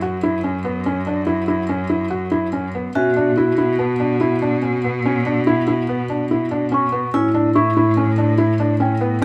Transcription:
Already playing: cello F#2
0.02 felt piano F#4
0.23 felt piano E4
0.44 felt piano C#4
0.65 felt piano B3
0.86 felt piano C#4
1.07 felt piano D4
1.27 felt piano E4
1.48 felt piano E4
1.69 felt piano C#4
1.90 felt piano E4
2.10 felt piano F#4
2.32 felt piano E4
2.53 felt piano C#4
2.75 felt piano B3
2.95 cello B2, felt piano C#4, vibraphone F#4, celesta E5
3.16 felt piano D4
3.37 felt piano E4
3.58 felt piano E4
3.79 felt piano B3, celesta A5
4.00 felt piano D4
4.21 felt piano E4
4.42 felt piano D4
4.62 felt piano C#4
4.84 felt piano B3
5.06 felt piano C#4
5.26 felt piano D4
5.47 felt piano E4
5.68 felt piano E4
5.89 felt piano B3
6.10 felt piano D4
6.31 felt piano E4
6.51 felt piano D4
6.72 felt piano C#4, celesta C#6
6.92 felt piano B3
7.14 cello A2, felt piano C#4, vibraphone E4
7.34 felt piano D4
7.55 felt piano E4, celesta C#6
7.77 felt piano E4
7.97 felt piano C#4
8.18 felt piano D4
8.38 felt piano E4
8.60 felt piano D4
8.80 felt piano C#4, celesta G5
9.01 felt piano B3
9.22 felt piano C#4

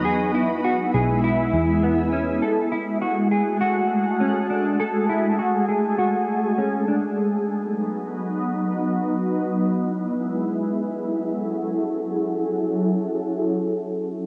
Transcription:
Already playing: ambient pad B3
0.05 picked electric bass E2, ambient pad G#3 E4, clean electric guitar G#4
0.34 clean electric guitar E4
0.64 clean electric guitar F#4
0.94 picked electric bass B1, clean electric guitar G#4
1.24 clean electric guitar E4
1.53 picked electric bass E2
1.83 clean electric guitar B3
2.13 clean electric guitar C#4
2.42 ambient pad A3 F#4, clean electric guitar A4
2.72 clean electric guitar E4
3.02 clean electric guitar F#4
3.31 clean electric guitar G#4
3.61 clean electric guitar F#4
4.20 clean electric guitar C#4
4.50 clean electric guitar D4
4.80 ambient pad G#4, clean electric guitar A4
5.09 clean electric guitar E4
5.39 clean electric guitar F#4
5.69 clean electric guitar G#4
5.99 clean electric guitar F#4
6.58 clean electric guitar C#4
6.88 clean electric guitar D4
7.17 ambient pad F#3 B3 D#4
11.93 ambient pad F#3 C#4 E4 G#4 A4

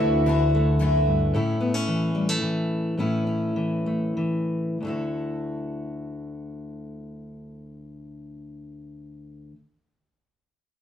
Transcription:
Already playing: steel-string acoustic guitar D2 D3 A3 F#4, upright bass D2, twelve-string acoustic guitar D3 E3 A3 E4 F#4
0.00 steel-string acoustic guitar E4
0.26 steel-string acoustic guitar D3, twelve-string acoustic guitar E3 A3 E4 F#4
0.55 steel-string acoustic guitar A3
0.79 steel-string acoustic guitar F#2, twelve-string acoustic guitar E3 A3 E4 F#4
1.07 steel-string acoustic guitar G2
1.34 steel-string acoustic guitar A2 A3 C#4 E4
1.61 steel-string acoustic guitar B3
1.74 steel-string acoustic guitar C#4
1.88 steel-string acoustic guitar E3
2.15 steel-string acoustic guitar G3
2.29 steel-string acoustic guitar A3
2.41 steel-string acoustic guitar E3
2.97 steel-string acoustic guitar A2 A3 C#4 E4
3.27 steel-string acoustic guitar C#4
3.56 steel-string acoustic guitar E3
3.86 steel-string acoustic guitar A3
4.17 steel-string acoustic guitar E3
4.80 steel-string acoustic guitar D2 D3
4.85 steel-string acoustic guitar A3 E4 F#4

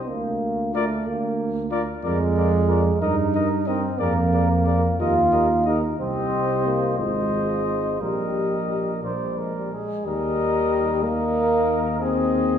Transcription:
Already playing: trombone C4
0.09 tuba D2, trombone A#3
0.73 trombone A3, french horn F4, flugelhorn A#4, trumpet D5
1.06 tuba D2, trombone A#3
1.71 french horn F4, flugelhorn A#4, trumpet D5
2.03 tuba F2, trombone G#3, french horn F4, flugelhorn A#4, trumpet D5
2.35 french horn F4, flugelhorn A#4, trumpet D5
2.68 french horn F4, flugelhorn A#4, trumpet D5
3.01 tuba G2, french horn D#4, trombone D#4, flugelhorn A#4, trumpet D#5
3.34 french horn D#4, flugelhorn A#4, trumpet D#5
3.66 trombone C4, french horn D#4, flugelhorn A#4, trumpet D#5
3.98 tuba F2, trombone A#3, french horn G#4, flugelhorn A#4, trumpet D5
4.33 french horn G#4, flugelhorn A#4, trumpet D5
4.66 french horn G#4, flugelhorn A#4, trumpet D5
4.99 tuba D#2, trombone F4, french horn G4, flugelhorn A#4, trumpet D#5
5.32 french horn G4, flugelhorn A#4, trumpet D#5
5.65 trombone D#4, french horn G4, flugelhorn A#4, trumpet D#5
5.99 tuba C2, trombone C4, french horn G4, flugelhorn C5, trumpet D#5
6.66 trombone A#3
6.98 tuba G#1, trombone G#3, french horn F4, flugelhorn C5, trumpet D#5
8.01 tuba A#1, trombone G3, french horn G4, flugelhorn A#4, trumpet D#5
9.03 tuba A#1, french horn A#3, flugelhorn C5, trumpet D5
9.21 french horn G3
9.38 french horn G#3, flugelhorn A#4
9.56 french horn G3
9.73 french horn G#3, flugelhorn G#4
10.05 tuba D#2, trombone D#3, french horn G3, flugelhorn A#4, trumpet D#5
11.04 trombone D#3, french horn A#3, flugelhorn A#4, trumpet D#5
12.00 trombone D#3, french horn C4, flugelhorn G#4, trumpet D#5

